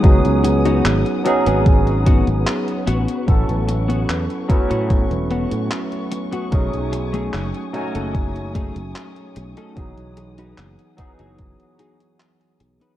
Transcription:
<<
  \new Staff \with { instrumentName = "String section" } { \time 4/4 \key a \lydian \tempo 4 = 74 << { dis'''2.~ dis'''8 cis'''8~ | cis'''1 | dis'''1~ | dis'''1 | } \\ { <b' fis''>1~ | <b' fis''>1 | <a gis''>1 | <gis' fis''>1 | } >> }
  \new Staff \with { instrumentName = "Clean electric guitar" } { \time 4/4 \key a \lydian r8. <b dis' fis'>16 r8. <b dis' gis'>16 r8 <b dis' fis'>16 r8. <b cis' fis'>8~ | <b cis' fis'>16 r8 <b cis' fis'>16 r8. <b cis' fis'>16 r8 <b cis' fis'>16 r4 <b cis' fis'>16 | r8. <a cis' dis' gis'>16 r8. <a cis' dis' a'>16 r8 <a cis' dis' gis'>16 r4 <a cis' dis' a'>16 | r8. <dis' fis' b'>16 r8. <dis' fis' gis'>16 r8 <dis' fis' gis'>16 r4 <dis' fis' b'>16 | }
  \new Staff \with { instrumentName = "Tine electric piano" } { \time 4/4 \key a \lydian <fis b cis' dis' gis'>4. <fis b cis' dis' gis'>2 r8 | <fis b cis' e' a'>4. <fis a b cis' e'>2~ <fis a b cis' e'>8 | <fis a cis' dis' gis'>4. <fis a cis' dis' gis''>2~ <fis a cis' dis' gis''>8 | <e fis b dis' gis'>4. <e fis b dis' gis'>2~ <e fis b dis' gis'>8 | }
  \new Staff \with { instrumentName = "Fretless electric bass" } { \clef bass \time 4/4 \key a \lydian cis,16 cis,8. gis,,16 r8 gis,,4 gis,,16 r8 a,,16 r16 | a,,16 a,,8. e,16 r8 a,8 e,,8 a,16 r4 | b,,16 b,,8. fis,,16 r8 fis,,4 fis,,16 r8 b,,16 r16 | b,,16 b,,8. fis,,16 r8 fis,,8 r4 r16 b,,16 r16 | }
  \new DrumStaff \with { instrumentName = "Drums" } \drummode { \time 4/4 <hh bd>16 hh16 hh16 hh16 <hc hh>16 hh16 hh16 hh16 <hh bd>16 hh16 <hh bd>16 hh16 <hc hh>16 hh16 hh16 hh16 | <hh bd>16 hh16 hh16 hh16 <hc hh>16 hh16 <hh bd>16 hh16 <hh bd>16 hh16 hh16 hh16 <hc hh>16 hh16 hh16 hh16 | <hh bd>16 hh16 hh16 hh16 <hc hh>16 hh16 hh16 hh16 <hh bd>16 hh16 <hh bd>16 hh16 <hc hh>16 hh16 hh16 hh16 | <hh bd>16 hh16 hh16 hh16 <hc hh>16 hh16 <hh bd>16 hh16 <hh bd>16 hh16 hh16 hh16 <hc hh>16 hh16 hh16 hh16 | }
>>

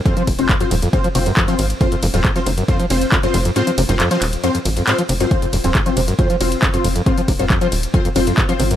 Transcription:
<<
  \new Staff \with { instrumentName = "Synth stab" } { \time 4/4 \key f \phrygian \tempo 4 = 137 <c' f' c''>8 r16 <c' f' c''>16 r16 <c' f' c''>16 r8 <c' f' c''>16 r16 <c' f' c''>8. <c' f' c''>8 r16 | <c' f' c''>8 r16 <c' f' c''>16 r16 <c' f' c''>16 r8 <c' f' c''>16 r16 <c' f' c''>8. <c' f' c''>8 r16 | <c' f' c''>8 r16 <c' f' c''>16 r16 <c' f' c''>16 r8 <c' f' c''>16 r8. <c' f' c''>16 r8 <c' f' c''>16 | <c' f' c''>8 r16 <c' f' c''>16 r16 <c' f' c''>16 r8 <c' f' c''>16 r16 <c' f' c''>8. <c' f' c''>8 r16 |
<c' f' c''>8 r16 <c' f' c''>16 r16 <c' f' c''>16 r8 <c' f' c''>16 r16 <c' f' c''>8. <c' f' c''>8 r16 | }
  \new Staff \with { instrumentName = "Acid bass" } { \clef bass \time 4/4 \key f \phrygian f,16 f16 r8 f,16 f,16 f,16 f,16 aes,16 f16 c16 ges,16 f,16 f16 r8 | f,16 f,16 f,16 f,16 aes,16 f16 c16 ges,16 f,16 f16 r8 f,16 f,16 f,16 f,16 | aes,16 f16 c16 ges,16 f,16 f16 r8 f,16 f,16 f,16 f,16 aes,16 f16 c16 ges,16 | f,16 f,16 f,16 f,16 aes,16 f16 c16 ges,16 f,16 f16 r8 f,16 f,16 f,16 f,16 |
aes,16 f16 c16 ges,16 f,16 f16 r8 f,16 f,16 f,16 f,16 aes,16 f16 c16 ges,16 | }
  \new Staff \with { instrumentName = "Analog synth bass" } { \clef bass \time 4/4 \key f \phrygian r8 f,,16 f,,16 r8 ees,,16 r8. f,,16 r8. aes,,16 r16 | r8 f,,16 ees,,16 r8 f,,16 r8. f,,16 r8. f,,16 r16 | r8 f,,16 f,,16 r8 ees,,16 r8. aes,,16 r8. f,,16 r16 | r8 f,,16 ees,,16 r8 f,,16 r8. f,,16 r8. f,,16 r16 |
r8 f,,16 f,,16 r8 ees,,16 r8. f,,16 r8. aes,,16 r16 | }
  \new DrumStaff \with { instrumentName = "Drums" } \drummode { \time 4/4 <hh bd>16 hh16 <hho bd cymr>16 hh16 <hc hh bd>16 hh16 <hho cymr>16 hh16 <hh bd>16 hh16 <hho cymr>16 hh16 <hc hh bd>16 hh16 <hho cymr>16 hh16 | <hh bd>16 hh16 <hho cymr>16 hh16 <hc hh bd>16 hh16 <hho cymr>16 hh16 <hh bd>16 hh16 <hho cymr>16 hh16 <hc hh bd>16 hh16 <hho cymr>16 hh16 | hh16 hh16 <hho cymr>16 hh16 <hc hh>16 hh16 <hc hho cymr>16 hh16 hh16 hh16 <hho cymr>16 hh16 <hc hh>16 hh16 <hho cymr>16 hh16 | <hh bd>16 hh16 <hho cymr>16 hh16 <hc hh bd>16 hh16 <hho cymr>16 hh16 <hh bd>16 hh16 <hho cymr>16 hh16 <hc hh bd>16 hh16 <hho cymr>16 hh16 |
<hh bd>16 hh16 <hho bd cymr>16 hh16 <hc hh bd>16 hh16 <hho cymr>16 hh16 <hh bd>16 hh16 <hho cymr>16 hh16 <hc hh bd>16 hh16 <hho cymr>16 hh16 | }
>>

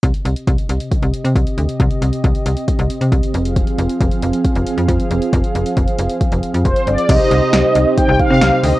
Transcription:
<<
  \new Staff \with { instrumentName = "Analog polysynth" } { \time 4/4 \key c \minor \tempo 4 = 136 r1 | r1 | r1 | r2. c''8 d''8 |
ees''2 g''8 f''4 ees''8 | }
  \new Staff \with { instrumentName = "Analog polysynth" } { \time 4/4 \key c \minor r1 | r1 | r1 | r1 |
<ees' g' c''>1 | }
  \new Staff \with { instrumentName = "Analog synth pad" } { \time 4/4 \key c \minor << { <c g' ees''>1~ | <c g' ees''>2.~ <c g' ees''>8 <f aes' f''>8~ | <f aes' f''>1~ | <f aes' f''>1 |
<c ees' g'>1 | } \\ { c'1~ | c'1~ | c'1~ | c'1 |
c'1 | } >> }
  \new Staff \with { instrumentName = "FM bass" } { \clef bass \time 4/4 \key c \minor c,16 r16 c,16 r16 c,16 r16 c,16 r8 c,16 r16 c16 c,16 r16 d,16 r16 | c,16 r16 c,16 r16 c,16 r16 c,16 r8 c,16 r16 c16 c,16 r16 f,,8~ | f,,16 r16 f,,16 r16 f,,16 r16 f,,16 r8 f,,16 r16 f,16 f,16 r16 f,,16 r16 | f,,16 r16 f,,16 r16 f,,16 r16 f,,16 r8 f,,16 r16 f,16 f,,16 r16 g,,16 r16 |
c,16 r16 c,16 r16 c,16 r16 c,16 r8 c,16 r16 c16 c,16 r16 d,16 r16 | }
  \new DrumStaff \with { instrumentName = "Drums" } \drummode { \time 4/4 <hh bd>16 hh16 hh16 hh16 <hh bd>16 hh16 hh16 hh16 <hh bd>16 hh16 hh16 hh16 <hh bd>16 hh16 hh16 hh16 | <hh bd>16 hh16 hh16 hh16 <hh bd>16 hh16 hh16 hh16 <hh bd>16 hh16 hh16 hh16 <hh bd>16 hh16 hh16 hh16 | <hh bd>16 hh16 hh16 hh16 <hh bd>16 hh16 hh16 hh16 <hh bd>16 hh16 hh16 hh16 <hh bd>16 hh16 hh16 hh16 | <hh bd>16 hh16 hh16 hh16 <hh bd>16 hh16 hh16 hh16 <hh bd>16 hh16 hh16 hh16 <hh bd>16 hh16 hh16 hh16 |
<cymc hh bd>8 hh8 <hh sn>8 hh8 <hh bd>8 <hh bd>8 <hh sn>8 hho8 | }
>>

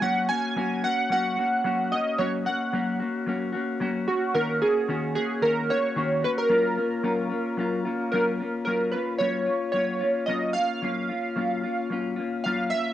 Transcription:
<<
  \new Staff \with { instrumentName = "Synth keys" } { \time 4/4 \key fis \major \tempo 4 = 111 fis''8 gis''4 fis''8 fis''4. dis''8 | cis''8 fis''4 r2 fis'8 | ais'8 gis'4 gis'8 ais'8 cis''4 b'16 ais'16~ | ais'2. ais'4 |
ais'8 b'8 cis''4 cis''4 dis''8 eis''8~ | eis''2 r4 eis''8 e''8 | }
  \new Staff \with { instrumentName = "Clean electric guitar" } { \time 4/4 \key fis \major <fis ais cis' fis'>8 <ais cis' fis'>8 <fis ais cis' fis'>8 <ais cis' fis'>8 <fis ais cis' fis'>8 <ais cis' fis'>8 <fis ais cis' fis'>8 <ais cis' fis'>8 | <fis ais cis' fis'>8 <ais cis' fis'>8 <fis ais cis' fis'>8 <ais cis' fis'>8 <fis ais cis' fis'>8 <ais cis' fis'>8 <fis ais cis' fis'>8 <ais cis' fis'>8 | <dis ais cis' fis'>8 <ais cis' fis'>8 <dis ais cis' fis'>8 <ais cis' fis'>8 <dis ais cis' fis'>8 <ais cis' fis'>8 <dis ais cis' fis'>8 <ais cis' fis'>8 | <fis ais cis' eis'>8 <ais cis' eis'>8 <fis ais cis' eis'>8 <ais cis' eis'>8 <fis ais cis' eis'>8 <ais cis' eis'>8 <fis ais cis' eis'>8 <ais cis' eis'>8 |
<fis ais cis' eis'>8 <ais cis' eis'>8 <fis ais cis' eis'>8 <ais cis' eis'>8 <fis ais cis' eis'>8 <ais cis' eis'>8 <fis ais cis' eis'>8 <ais cis' eis'>8 | <fis ais cis' eis'>8 <ais cis' eis'>8 <fis ais cis' eis'>8 <ais cis' eis'>8 <fis ais cis' eis'>8 <ais cis' eis'>8 <fis ais cis' eis'>8 <ais cis' eis'>8 | }
>>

